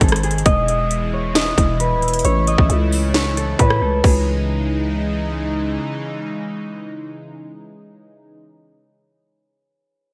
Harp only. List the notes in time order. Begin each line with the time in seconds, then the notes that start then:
Already playing: C5
0.01 A4
0.24 G#4
0.46 D#5
0.68 E5
1.14 C#5
1.35 D#5
1.80 B4
2.25 C#5
2.48 D#5
3.15 C#5
3.37 A4
3.59 B4
3.82 A4
4.04 G#4